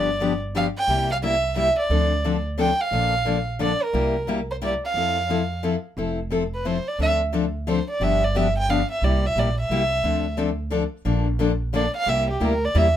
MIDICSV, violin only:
0, 0, Header, 1, 2, 480
1, 0, Start_track
1, 0, Key_signature, -1, "major"
1, 0, Tempo, 338983
1, 1255, Time_signature, 3, 2, 24, 8
1, 18361, End_track
2, 0, Start_track
2, 0, Title_t, "Violin"
2, 0, Program_c, 0, 40
2, 0, Note_on_c, 0, 74, 85
2, 550, Note_off_c, 0, 74, 0
2, 804, Note_on_c, 0, 77, 87
2, 931, Note_off_c, 0, 77, 0
2, 1106, Note_on_c, 0, 79, 93
2, 1537, Note_off_c, 0, 79, 0
2, 1581, Note_on_c, 0, 77, 89
2, 1656, Note_off_c, 0, 77, 0
2, 1755, Note_on_c, 0, 76, 90
2, 2192, Note_off_c, 0, 76, 0
2, 2237, Note_on_c, 0, 76, 86
2, 2504, Note_off_c, 0, 76, 0
2, 2536, Note_on_c, 0, 74, 81
2, 3429, Note_off_c, 0, 74, 0
2, 3695, Note_on_c, 0, 79, 90
2, 3971, Note_on_c, 0, 77, 93
2, 3992, Note_off_c, 0, 79, 0
2, 4923, Note_off_c, 0, 77, 0
2, 5125, Note_on_c, 0, 74, 81
2, 5429, Note_on_c, 0, 70, 78
2, 5450, Note_off_c, 0, 74, 0
2, 6074, Note_off_c, 0, 70, 0
2, 6387, Note_on_c, 0, 72, 72
2, 6461, Note_off_c, 0, 72, 0
2, 6580, Note_on_c, 0, 74, 75
2, 6709, Note_off_c, 0, 74, 0
2, 6873, Note_on_c, 0, 77, 82
2, 7940, Note_off_c, 0, 77, 0
2, 9264, Note_on_c, 0, 71, 71
2, 9441, Note_on_c, 0, 72, 69
2, 9463, Note_off_c, 0, 71, 0
2, 9743, Note_on_c, 0, 74, 73
2, 9764, Note_off_c, 0, 72, 0
2, 9911, Note_off_c, 0, 74, 0
2, 9938, Note_on_c, 0, 76, 78
2, 10105, Note_off_c, 0, 76, 0
2, 10891, Note_on_c, 0, 72, 69
2, 11153, Note_off_c, 0, 72, 0
2, 11193, Note_on_c, 0, 74, 73
2, 11374, Note_on_c, 0, 76, 86
2, 11395, Note_off_c, 0, 74, 0
2, 11671, Note_on_c, 0, 74, 79
2, 11693, Note_off_c, 0, 76, 0
2, 11848, Note_on_c, 0, 76, 77
2, 11869, Note_off_c, 0, 74, 0
2, 12131, Note_off_c, 0, 76, 0
2, 12151, Note_on_c, 0, 79, 94
2, 12322, Note_on_c, 0, 77, 82
2, 12344, Note_off_c, 0, 79, 0
2, 12608, Note_off_c, 0, 77, 0
2, 12620, Note_on_c, 0, 76, 74
2, 12804, Note_on_c, 0, 74, 76
2, 12826, Note_off_c, 0, 76, 0
2, 13117, Note_on_c, 0, 76, 89
2, 13139, Note_off_c, 0, 74, 0
2, 13299, Note_on_c, 0, 74, 70
2, 13320, Note_off_c, 0, 76, 0
2, 13576, Note_off_c, 0, 74, 0
2, 13599, Note_on_c, 0, 76, 91
2, 14662, Note_off_c, 0, 76, 0
2, 16646, Note_on_c, 0, 74, 79
2, 16908, Note_off_c, 0, 74, 0
2, 16941, Note_on_c, 0, 77, 101
2, 17119, Note_on_c, 0, 76, 90
2, 17141, Note_off_c, 0, 77, 0
2, 17404, Note_off_c, 0, 76, 0
2, 17423, Note_on_c, 0, 67, 72
2, 17623, Note_on_c, 0, 70, 82
2, 17644, Note_off_c, 0, 67, 0
2, 17916, Note_on_c, 0, 74, 85
2, 17937, Note_off_c, 0, 70, 0
2, 18095, Note_on_c, 0, 76, 80
2, 18117, Note_off_c, 0, 74, 0
2, 18361, Note_off_c, 0, 76, 0
2, 18361, End_track
0, 0, End_of_file